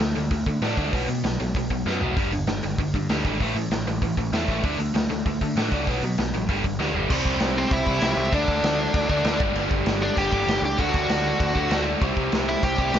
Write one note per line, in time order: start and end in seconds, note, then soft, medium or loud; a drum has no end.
0.00 0.13 D2 medium
0.00 0.15 D3 medium
0.00 0.15 A3 medium
0.00 snare loud
0.16 0.29 D2 medium
0.16 0.30 D3 medium
0.16 0.30 A3 medium
0.16 open hi-hat medium
0.31 0.44 D2 medium
0.31 0.45 D3 medium
0.31 0.46 A3 medium
0.31 kick loud
0.31 open hi-hat medium
0.46 0.59 D3 medium
0.46 0.61 D3 medium
0.46 0.61 A3 medium
0.46 kick medium
0.46 open hi-hat medium
0.61 0.75 A2 loud
0.61 0.76 D3 medium
0.61 0.77 A3 medium
0.61 0.77 D4 loud
0.61 snare loud
0.61 open hi-hat medium
0.77 0.90 D2 medium
0.77 0.92 D3 medium
0.77 0.93 A3 loud
0.77 0.93 D4 medium
0.77 kick medium
0.77 open hi-hat medium
0.93 1.06 B1 medium
0.93 1.07 B2 medium
0.93 1.08 F#3 medium
0.93 1.08 B3 medium
0.93 kick medium
0.93 open hi-hat medium
1.08 1.23 B2 medium
1.08 1.21 B2 medium
1.08 1.23 F#3 medium
1.08 open hi-hat medium
1.24 1.37 B1 medium
1.24 1.38 B2 medium
1.24 1.38 F#3 medium
1.24 snare loud
1.24 open hi-hat medium
1.40 1.52 B1 medium
1.40 1.54 B2 medium
1.40 1.54 F#3 medium
1.40 open hi-hat medium
1.55 1.68 B1 medium
1.55 1.69 B2 medium
1.55 1.70 F#3 medium
1.55 kick loud
1.55 open hi-hat medium
1.70 1.83 B1 medium
1.70 1.84 B2 medium
1.70 1.85 F#3 medium
1.70 kick medium
1.70 open hi-hat soft
1.86 1.99 F#2 medium
1.86 2.00 B2 medium
1.86 2.00 F#3 medium
1.86 2.01 B3 loud
1.86 snare medium
2.01 2.14 B1 medium
2.01 2.16 B2 medium
2.01 2.16 F#3 medium
2.01 2.16 B3 medium
2.01 floor tom medium
2.16 2.29 G1 medium
2.16 2.31 G2 medium
2.16 2.32 D3 medium
2.16 2.32 G3 loud
2.16 kick loud
2.16 open hi-hat medium
2.32 2.45 G1 medium
2.32 2.46 G2 medium
2.32 2.47 D3 medium
2.32 open hi-hat medium
2.47 2.60 G1 medium
2.47 2.61 G2 medium
2.47 2.62 D3 medium
2.47 snare medium
2.47 open hi-hat medium
2.62 2.76 G1 medium
2.62 2.77 G2 medium
2.62 2.77 D3 medium
2.62 open hi-hat medium
2.78 2.91 G1 medium
2.78 2.93 G2 medium
2.78 2.93 D3 medium
2.78 kick loud
2.78 open hi-hat medium
2.94 3.06 G2 medium
2.94 3.08 G2 medium
2.94 3.09 D3 medium
2.94 kick medium
2.94 open hi-hat medium
3.09 3.22 D2 medium
3.09 3.24 G2 medium
3.09 3.24 D3 medium
3.09 3.25 G3 loud
3.09 snare loud
3.09 open hi-hat medium
3.25 3.37 G#1 medium
3.25 3.39 G2 medium
3.25 3.40 D3 medium
3.25 3.40 G3 loud
3.25 kick medium
3.25 open hi-hat medium
3.40 3.53 A1 medium
3.40 3.55 A2 medium
3.40 3.55 E3 medium
3.40 3.56 A3 medium
3.40 kick medium
3.40 open hi-hat medium
3.55 3.68 A2 medium
3.55 3.70 A2 medium
3.55 3.70 E3 medium
3.55 open hi-hat medium
3.70 3.83 A1 medium
3.70 3.85 A2 medium
3.70 3.86 E3 medium
3.70 snare loud
3.70 open hi-hat medium
3.86 3.99 A1 medium
3.86 4.01 A2 medium
3.86 4.01 E3 medium
3.86 open hi-hat medium
4.02 4.14 A1 medium
4.02 4.16 A2 medium
4.02 4.16 E3 medium
4.02 kick loud
4.02 open hi-hat medium
4.17 4.30 A1 medium
4.17 4.31 A2 medium
4.17 4.32 E3 medium
4.17 kick medium
4.17 open hi-hat soft
4.32 4.45 E2 medium
4.32 4.47 A2 medium
4.32 4.48 E3 medium
4.32 4.48 A3 loud
4.32 snare loud
4.32 open hi-hat medium
4.48 4.61 A1 medium
4.48 4.63 A2 medium
4.48 4.64 E3 medium
4.48 4.64 A3 medium
4.48 kick medium
4.48 open hi-hat medium
4.64 4.76 D2 medium
4.64 4.78 D3 medium
4.64 4.79 A3 medium
4.64 4.79 D4 medium
4.64 kick medium
4.64 open hi-hat medium
4.78 4.91 D2 medium
4.78 4.93 D3 medium
4.78 4.94 A3 medium
4.78 open hi-hat medium
4.94 5.07 D2 medium
4.94 5.09 D3 medium
4.94 5.09 A3 medium
4.94 snare loud
4.94 open hi-hat medium
5.10 5.22 D2 medium
5.10 5.24 D3 medium
5.10 5.24 A3 medium
5.10 open hi-hat medium
5.25 5.38 D2 medium
5.25 5.40 D3 medium
5.25 5.40 A3 medium
5.25 kick loud
5.25 open hi-hat medium
5.41 5.54 D3 medium
5.41 5.55 D3 medium
5.41 5.55 A3 medium
5.41 kick medium
5.41 open hi-hat medium
5.56 5.69 A2 medium
5.56 5.71 D3 medium
5.56 5.72 A3 medium
5.56 5.72 D4 loud
5.56 snare loud
5.56 open hi-hat medium
5.72 5.84 C#2 medium
5.72 5.87 D3 medium
5.72 5.87 A3 medium
5.72 5.87 D4 medium
5.72 kick medium
5.72 open hi-hat medium
5.87 6.00 B1 medium
5.87 6.02 B2 medium
5.87 6.02 F#3 loud
5.87 6.03 B3 loud
5.87 kick medium
5.87 open hi-hat medium
6.02 6.15 B2 medium
6.02 6.17 B2 medium
6.02 6.17 F#3 medium
6.02 open hi-hat medium
6.18 6.31 B1 medium
6.18 6.32 B2 medium
6.18 6.32 F#3 medium
6.18 snare loud
6.18 open hi-hat medium
6.33 6.46 A1 medium
6.33 6.48 B2 medium
6.33 6.48 F#3 medium
6.33 open hi-hat medium
6.49 6.61 G1 medium
6.49 6.63 G2 medium
6.49 6.64 D3 loud
6.49 6.64 G3 loud
6.49 kick loud
6.49 open hi-hat medium
6.64 6.77 G1 medium
6.64 6.78 G2 medium
6.64 6.78 D3 medium
6.64 kick medium
6.64 open hi-hat soft
6.79 6.92 D2 loud
6.79 6.94 G2 medium
6.79 6.94 D3 medium
6.79 6.94 G3 loud
6.79 snare medium
6.94 7.07 G1 medium
6.94 7.10 G2 medium
6.94 7.10 D3 medium
6.94 7.10 G3 loud
6.94 floor tom medium
7.10 7.22 C2 loud
7.10 7.86 C3 medium
7.10 7.87 G3 loud
7.10 7.85 C4 loud
7.10 kick loud
7.10 crash loud
7.10 crash medium
7.25 7.37 C2 medium
7.25 kick medium
7.40 7.64 C2 medium
7.40 snare loud
7.40 crash medium
7.58 7.72 C4 medium
7.58 7.73 C5 medium
7.71 7.83 C2 loud
7.71 8.15 E4 medium
7.71 8.18 E5 loud
7.71 kick loud
7.71 crash medium
7.86 7.98 C2 medium
7.86 8.01 C3 medium
7.86 8.02 G3 medium
7.86 8.01 C4 medium
7.86 kick medium
8.01 8.13 C2 loud
8.01 8.31 C3 medium
8.01 8.33 G3 medium
8.01 8.34 C4 medium
8.01 snare loud
8.01 crash medium
8.16 8.28 C2 medium
8.16 8.33 E4 medium
8.16 8.33 E5 loud
8.32 8.44 D2 medium
8.32 9.08 D3 medium
8.32 9.09 A3 medium
8.32 9.36 D4 medium
8.32 9.09 D4 loud
8.32 9.41 D5 medium
8.32 kick loud
8.32 crash medium
8.48 8.60 D2 loud
8.48 kick medium
8.63 8.86 D2 medium
8.63 snare loud
8.63 crash medium
8.94 9.06 D2 medium
8.94 kick loud
8.94 crash medium
9.09 9.21 D2 medium
9.09 9.23 D3 medium
9.09 9.25 A3 medium
9.09 9.28 D4 medium
9.09 kick medium
9.24 9.36 D2 loud
9.24 9.39 D3 medium
9.24 9.40 A3 medium
9.24 10.81 D4 medium
9.24 snare loud
9.24 crash medium
9.40 9.52 G1 medium
9.40 10.15 G2 medium
9.40 10.17 D3 loud
9.40 10.18 G3 loud
9.40 kick loud
9.55 9.67 G1 medium
9.55 crash medium
9.71 9.83 G1 loud
9.71 kick medium
9.85 10.09 G1 medium
9.85 snare loud
9.85 crash medium
10.03 10.17 D4 medium
10.03 10.18 D5 medium
10.16 10.29 G1 medium
10.16 10.31 G2 medium
10.16 10.32 D3 medium
10.16 10.30 G3 medium
10.16 10.60 G4 medium
10.16 10.60 G5 loud
10.16 kick loud
10.16 crash medium
10.31 10.44 G1 medium
10.31 10.64 G2 medium
10.31 10.63 D3 medium
10.31 10.62 G3 medium
10.31 kick medium
10.47 10.59 G1 loud
10.47 snare loud
10.47 crash medium
10.62 10.74 C#2 medium
10.62 10.78 G4 medium
10.62 10.80 G5 loud
10.78 10.90 D2 medium
10.78 11.54 D3 medium
10.78 11.55 A3 medium
10.78 11.53 D4 loud
10.78 11.83 F#4 medium
10.78 11.83 F#5 loud
10.78 kick loud
10.78 crash medium
10.94 11.06 D2 medium
10.94 kick medium
11.09 11.32 D2 medium
11.09 snare loud
11.09 crash medium
11.40 11.51 D2 loud
11.40 kick loud
11.40 crash medium
11.54 11.67 D2 medium
11.54 11.69 D3 medium
11.54 11.70 A3 medium
11.54 11.69 D4 medium
11.54 kick medium
11.70 11.94 D2 loud
11.70 12.00 D3 medium
11.70 12.01 A3 medium
11.70 12.02 D4 medium
11.70 snare loud
11.70 crash medium
12.01 12.13 C2 loud
12.01 12.77 C3 medium
12.01 12.78 G3 medium
12.01 12.76 C4 loud
12.01 kick loud
12.01 crash medium
12.17 12.29 C2 loud
12.17 kick medium
12.32 12.55 C2 medium
12.32 snare loud
12.32 crash medium
12.49 12.63 E4 medium
12.49 12.63 E5 medium
12.63 12.74 C2 loud
12.63 12.99 G4 medium
12.63 12.99 G5 loud
12.63 kick loud
12.63 crash medium
12.78 12.90 C2 medium
12.78 12.92 C3 medium
12.78 12.93 G3 medium
12.78 12.92 C4 medium
12.78 kick medium
12.93 12.99 C2 loud
12.93 12.99 C3 medium
12.93 12.99 G3 medium
12.93 snare loud
12.93 crash medium